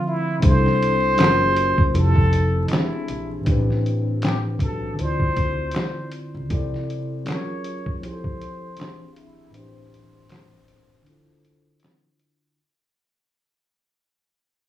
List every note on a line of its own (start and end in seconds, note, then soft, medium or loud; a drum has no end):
0.00 0.37 D3 medium
0.00 0.42 F3 medium
0.00 0.38 A3 medium
0.00 0.39 C4 medium
0.00 0.41 E5 medium
0.07 0.46 E4 medium
0.39 1.15 C2 loud
0.39 1.17 C3 medium
0.39 1.17 C4 medium
0.39 1.18 D4 medium
0.39 1.19 E4 medium
0.39 kick loud
0.39 closed hi-hat medium
0.44 0.51 G#4 medium
0.44 1.97 C5 loud
0.51 1.23 A4 medium
0.66 snare soft
0.82 closed hi-hat medium
1.15 1.93 F#3 medium
1.15 1.94 C#4 medium
1.15 1.94 F4 medium
1.15 closed hi-hat medium
1.19 1.75 F#1 loud
1.19 1.95 G#4 medium
1.19 1.96 A#4 medium
1.19 snare loud
1.19 clap medium
1.57 closed hi-hat medium
1.78 1.93 F#1 medium
1.78 kick loud
1.92 2.66 F1 loud
1.92 2.69 F3 medium
1.92 2.68 C4 medium
1.92 2.70 E4 medium
1.92 closed hi-hat medium
1.96 2.71 G4 medium
1.96 2.65 A4 loud
1.96 2.72 A4 medium
2.16 kick medium
2.33 closed hi-hat medium
2.67 3.41 E3 medium
2.67 3.44 C4 soft
2.67 3.46 D4 medium
2.67 2.75 D#4 soft
2.67 closed hi-hat medium
2.72 3.31 E4 medium
2.72 3.47 G4 medium
2.72 3.48 G#4 medium
2.72 snare loud
2.72 clap medium
3.08 3.43 A#1 medium
3.08 closed hi-hat medium
3.40 4.92 A2 medium
3.40 4.93 E3 medium
3.45 4.57 A1 loud
3.45 4.94 C4 medium
3.45 4.96 D4 medium
3.45 kick loud
3.45 closed hi-hat medium
3.49 4.97 G4 medium
3.49 4.98 B4 medium
3.70 snare soft
3.86 closed hi-hat soft
4.22 4.40 G4 medium
4.22 snare loud
4.22 clap medium
4.22 closed hi-hat medium
4.59 4.94 B1 medium
4.59 5.02 A4 medium
4.59 kick medium
4.59 closed hi-hat medium
4.93 6.45 D3 medium
4.93 6.46 C4 soft
4.99 5.33 D2 medium
4.99 6.47 E4 medium
4.99 6.49 F4 medium
4.99 6.13 C5 loud
4.99 closed hi-hat medium
5.04 6.50 D5 medium
5.20 kick medium
5.37 5.71 D2 medium
5.37 kick medium
5.37 closed hi-hat medium
5.71 closed hi-hat medium
5.76 snare loud
5.76 clap medium
6.12 closed hi-hat medium
6.34 6.49 C#2 medium
6.49 7.25 C3 medium
6.49 7.26 C4 medium
6.49 7.27 E4 medium
6.49 7.27 A4 medium
6.49 kick loud
6.49 closed hi-hat medium
6.54 7.28 D5 medium
6.74 snare soft
6.90 closed hi-hat soft
7.24 8.01 F#3 medium
7.24 8.02 C#4 medium
7.24 8.02 F4 medium
7.24 clap medium
7.24 closed hi-hat medium
7.28 8.03 G#4 medium
7.28 8.04 A#4 medium
7.28 7.99 C#5 loud
7.28 snare loud
7.64 closed hi-hat medium
7.86 kick medium
8.01 8.77 F3 medium
8.01 8.77 C4 medium
8.01 8.79 E4 medium
8.01 closed hi-hat medium
8.05 8.79 G4 medium
8.05 8.12 G#4 medium
8.05 9.07 C5 loud
8.13 8.83 A4 medium
8.24 kick medium
8.41 closed hi-hat medium
8.77 9.51 E3 medium
8.77 9.53 C4 medium
8.77 9.55 D4 soft
8.77 closed hi-hat medium
8.81 9.55 G4 soft
8.81 9.56 G#4 medium
8.81 snare medium
8.81 clap medium
9.13 9.19 F4 medium
9.13 closed hi-hat soft
9.18 9.57 E4 medium
9.50 11.01 A2 medium
9.50 11.02 E3 medium
9.54 11.03 C4 medium
9.54 11.03 D4 medium
9.54 11.07 C5 loud
9.54 closed hi-hat medium
9.59 11.05 G4 medium
9.59 11.06 C5 medium
9.94 closed hi-hat soft
10.29 snare loud
10.29 clap medium
10.29 closed hi-hat medium
10.68 closed hi-hat medium
11.02 12.53 D3 medium
11.02 12.54 D4 medium
11.06 12.55 E4 medium
11.06 12.57 F4 medium
11.06 12.17 A4 medium
11.06 closed hi-hat medium
11.13 12.58 C5 medium
11.45 closed hi-hat medium
11.80 closed hi-hat medium
11.84 snare loud
11.84 clap medium
12.19 closed hi-hat medium